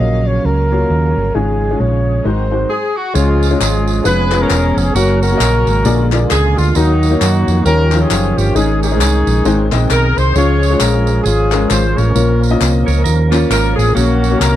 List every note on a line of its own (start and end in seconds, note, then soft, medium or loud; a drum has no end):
0.00 0.38 A#1 medium
0.00 2.21 C#3 medium
0.00 1.33 F#3 medium
0.00 0.49 A#3 medium
0.00 1.33 A#3 medium
0.00 1.34 A#3 medium
0.00 1.33 C#4 medium
0.00 2.23 C#4 medium
0.00 0.46 F4 medium
0.00 0.47 F#4 medium
0.00 0.47 C#5 medium
0.00 0.28 D#5 medium
0.00 2.21 F5 medium
0.27 0.47 C#5 medium
0.45 0.83 C#2 medium
0.45 1.37 A#4 medium
0.72 1.21 A#3 medium
0.72 1.21 F4 medium
0.72 1.21 F#4 medium
0.72 1.21 C#5 medium
0.90 1.13 D#2 medium
1.16 1.32 G1 medium
1.35 1.73 G#1 medium
1.35 2.03 G#2 medium
1.35 2.25 F3 medium
1.35 1.64 G#3 medium
1.35 2.69 G#3 medium
1.35 1.64 C#4 medium
1.35 2.25 C#4 medium
1.35 1.64 F4 medium
1.35 1.82 G#4 medium
1.35 2.25 G#4 medium
1.35 1.64 C#5 medium
1.71 2.24 G#3 medium
1.71 2.25 C#4 medium
1.71 2.25 F4 medium
1.71 2.25 C#5 medium
1.80 2.18 A#1 medium
1.80 2.25 C#5 medium
2.25 2.63 G#1 medium
2.25 2.67 G#2 medium
2.25 2.70 D#3 medium
2.25 2.70 F#3 medium
2.25 2.47 G#3 medium
2.25 2.70 C4 medium
2.25 2.70 D#4 medium
2.25 2.47 D#4 medium
2.25 2.70 F#4 medium
2.25 2.47 F#4 medium
2.25 2.47 C5 medium
2.25 2.94 C5 medium
2.51 2.70 G#3 medium
2.51 2.70 D#4 medium
2.51 2.70 F#4 medium
2.51 2.70 C5 medium
2.70 2.95 G#4 medium
2.97 3.15 F#4 medium
3.14 3.54 C#2 medium
3.14 3.83 C#3 medium
3.14 4.93 F3 medium
3.14 3.43 G#3 medium
3.14 4.04 G#3 medium
3.14 4.01 G#3 medium
3.14 3.44 C#4 medium
3.14 4.04 C#4 medium
3.14 3.59 C#4 medium
3.14 3.59 F4 medium
3.14 3.44 F4 medium
3.14 4.04 G#4 medium
3.14 3.44 C#5 medium
3.14 tambourine medium
3.43 tambourine medium
3.51 4.03 G#3 medium
3.51 4.03 C#4 medium
3.51 4.03 F4 medium
3.51 4.05 C#5 medium
3.60 3.99 G#1 medium
3.60 4.02 C#4 medium
3.60 4.02 F4 medium
3.60 4.05 G#4 medium
3.60 clap medium
3.60 tambourine loud
3.88 tambourine medium
4.04 4.44 F1 medium
4.04 4.26 G#3 medium
4.04 4.94 B3 medium
4.04 4.27 C#4 medium
4.04 4.94 C#4 medium
4.04 4.27 F4 medium
4.04 4.94 G#4 medium
4.04 4.76 G#4 medium
4.04 4.27 B4 medium
4.04 4.39 B4 loud
4.04 tambourine medium
4.31 4.81 G#3 medium
4.31 4.81 B3 medium
4.31 4.81 C#4 medium
4.31 4.81 F4 medium
4.31 clap medium
4.31 tambourine soft
4.42 4.92 C#4 medium
4.42 4.77 A#4 loud
4.50 4.73 E1 loud
4.50 clap medium
4.50 tambourine medium
4.77 4.92 F1 loud
4.77 4.96 G#4 medium
4.77 tambourine medium
4.95 5.33 F#1 loud
4.95 5.84 C#3 medium
4.95 5.85 F#3 medium
4.95 5.24 A#3 medium
4.95 5.84 A#3 medium
4.95 5.24 C#4 medium
4.95 5.21 C#4 medium
4.95 5.21 F#4 medium
4.95 5.24 F#4 medium
4.95 5.85 F#4 medium
4.95 5.21 A#4 loud
4.95 5.24 C#5 medium
4.95 tambourine medium
5.22 6.08 C#4 medium
5.22 6.08 F#4 medium
5.22 6.08 A#4 medium
5.22 tambourine medium
5.31 5.83 A#3 medium
5.31 5.86 C#4 medium
5.31 5.86 F#4 medium
5.31 5.36 C#5 medium
5.38 5.63 A#1 medium
5.38 5.89 D#5 medium
5.38 clap loud
5.38 tambourine loud
5.67 5.83 G#1 medium
5.67 tambourine medium
5.85 6.24 A#1 loud
5.85 6.53 A#2 medium
5.85 6.75 D3 medium
5.85 6.75 G#3 medium
5.85 6.07 A#3 medium
5.85 7.64 A#3 medium
5.85 6.07 F4 medium
5.85 6.75 F4 medium
5.85 6.07 G#4 medium
5.85 6.07 D5 loud
5.85 tambourine medium
6.12 6.61 A#3 medium
6.12 6.61 F4 medium
6.12 6.61 G#4 medium
6.12 6.61 D5 medium
6.12 clap medium
6.12 tambourine soft
6.30 6.54 C#2 medium
6.30 6.55 G#4 medium
6.30 clap medium
6.30 tambourine medium
6.57 6.73 D2 medium
6.57 6.75 F4 medium
6.57 tambourine medium
6.75 7.14 D#2 loud
6.75 7.44 D#3 medium
6.75 7.65 D#3 medium
6.75 7.65 F#3 medium
6.75 7.62 F#3 medium
6.75 7.04 A#3 medium
6.75 7.20 A#3 medium
6.75 7.20 D#4 medium
6.75 7.04 D#4 medium
6.75 7.04 F#4 medium
6.75 7.65 F#4 medium
6.75 7.05 D#5 medium
6.75 tambourine medium
7.03 tambourine medium
7.11 7.65 A#3 medium
7.11 7.64 D#4 medium
7.11 7.65 F#4 medium
7.11 7.65 C#5 medium
7.20 7.44 F#2 medium
7.20 7.62 A#3 medium
7.20 7.62 D#4 medium
7.20 7.65 F#4 medium
7.20 clap medium
7.20 tambourine loud
7.48 7.63 F2 medium
7.48 tambourine medium
7.65 8.04 D#2 loud
7.65 8.34 D#3 medium
7.65 10.34 D#3 medium
7.65 8.55 F3 medium
7.65 7.87 G3 medium
7.65 8.00 C#4 medium
7.65 9.44 C#4 medium
7.65 7.87 D#4 medium
7.65 7.87 F4 medium
7.65 8.55 F4 medium
7.65 8.36 G4 medium
7.65 7.99 A#4 loud
7.65 7.87 C#5 medium
7.65 tambourine medium
7.92 8.41 F3 medium
7.92 8.42 D#4 medium
7.92 8.42 F4 medium
7.92 8.42 C#5 medium
7.92 clap medium
7.92 tambourine medium
8.00 8.51 C#4 medium
8.00 8.51 F4 medium
8.00 8.37 G#4 loud
8.11 8.33 F#1 medium
8.11 clap medium
8.11 tambourine medium
8.37 8.53 G1 medium
8.37 8.55 G4 medium
8.37 tambourine medium
8.55 9.01 G#1 loud
8.55 9.23 G#2 medium
8.55 8.84 G#3 medium
8.55 12.12 G#3 medium
8.55 8.81 C#4 medium
8.55 8.84 C#4 medium
8.55 8.82 D#4 medium
8.55 8.84 D#4 medium
8.55 8.81 G#4 loud
8.55 12.12 G#4 medium
8.55 8.84 C#5 medium
8.55 tambourine medium
8.82 9.68 C#4 medium
8.82 9.69 D#4 medium
8.82 9.68 G#4 medium
8.82 tambourine medium
8.92 9.44 G#3 medium
8.92 9.46 C#4 medium
8.92 9.45 D#4 medium
8.92 8.96 C5 medium
8.98 9.23 C2 medium
8.98 9.49 C#5 medium
8.98 clap loud
8.98 tambourine loud
9.27 9.43 A#1 medium
9.27 tambourine medium
9.45 9.68 G#1 loud
9.45 10.13 G#2 medium
9.45 9.67 G#3 medium
9.45 10.34 C4 medium
9.45 9.67 C4 medium
9.45 9.67 D#4 medium
9.45 9.67 C5 loud
9.45 tambourine medium
9.72 9.88 A#1 medium
9.72 10.21 G#3 medium
9.72 10.21 C4 medium
9.72 10.21 D#4 medium
9.72 10.21 D#5 medium
9.72 clap medium
9.72 tambourine medium
9.90 10.13 B1 medium
9.90 10.16 A#4 medium
9.90 clap medium
9.90 tambourine medium
10.17 10.33 C2 medium
10.17 10.35 C5 medium
10.17 tambourine soft
10.35 10.74 C#2 loud
10.35 11.03 C#3 medium
10.35 12.14 F3 medium
10.35 10.64 G#3 medium
10.35 10.64 C#4 medium
10.35 13.92 C#4 medium
10.35 10.64 F4 medium
10.35 10.80 F4 medium
10.35 11.22 G#4 medium
10.35 10.80 C#5 loud
10.35 10.64 C#5 medium
10.35 tambourine medium
10.63 tambourine medium
10.70 11.27 G#3 medium
10.70 11.27 C#4 medium
10.70 11.27 F4 medium
10.70 11.27 C#5 medium
10.80 11.19 A#1 medium
10.80 11.24 C#4 medium
10.80 11.24 F4 medium
10.80 11.25 A#4 medium
10.80 clap medium
10.80 tambourine loud
11.07 tambourine medium
11.24 11.64 G#1 medium
11.24 12.11 C#4 medium
11.24 11.97 F4 medium
11.24 11.66 G#4 medium
11.24 tambourine medium
11.52 12.01 G#3 medium
11.52 12.01 C#4 medium
11.52 12.01 F4 medium
11.52 12.01 A#4 medium
11.52 clap medium
11.52 tambourine soft
11.69 11.93 G#1 loud
11.69 11.97 C5 medium
11.69 clap medium
11.69 tambourine medium
11.97 12.13 A1 medium
11.97 12.84 F4 medium
11.97 12.84 A#4 medium
11.97 12.42 C#5 medium
11.97 tambourine soft
12.15 12.54 A#1 loud
12.15 12.83 A#2 medium
12.15 13.94 F3 medium
12.15 12.44 A#3 medium
12.15 14.56 A#3 medium
12.15 12.44 C#4 medium
12.15 12.44 F4 medium
12.15 14.56 A#4 medium
12.15 12.44 C#5 medium
12.15 tambourine medium
12.43 tambourine medium
12.50 13.07 A#3 medium
12.50 13.07 C#4 medium
12.50 13.07 F4 medium
12.50 13.07 D#5 medium
12.61 12.84 C2 medium
12.61 clap loud
12.61 tambourine loud
12.86 13.03 C#2 medium
12.86 13.03 A#4 medium
12.86 13.04 C#5 medium
12.86 tambourine medium
13.04 13.44 D#2 medium
13.04 13.30 A#4 medium
13.04 tambourine medium
13.31 13.81 A#3 medium
13.31 13.92 C#4 medium
13.31 13.81 C#4 medium
13.31 13.92 F4 medium
13.31 13.81 F4 medium
13.31 13.81 C#5 loud
13.31 clap medium
13.31 tambourine medium
13.50 13.73 G#1 medium
13.50 13.76 A#4 medium
13.50 clap medium
13.50 tambourine medium
13.76 13.93 A1 medium
13.76 13.94 G#4 medium
13.76 tambourine medium
13.94 14.34 A#1 loud
13.94 14.56 A#2 medium
13.94 14.56 F#3 medium
13.94 14.56 A#3 medium
13.94 14.24 A#3 medium
13.94 14.56 C#4 medium
13.94 14.24 C#4 medium
13.94 14.56 C#4 medium
13.94 14.40 F#4 medium
13.94 14.24 F#4 medium
13.94 14.24 C#5 medium
13.94 tambourine medium
14.24 tambourine medium
14.31 14.56 A#3 medium
14.31 14.56 C#4 medium
14.31 14.56 F#4 medium
14.31 14.56 C#5 medium
14.39 14.56 C2 medium
14.39 14.56 A#4 medium
14.39 clap medium
14.39 tambourine medium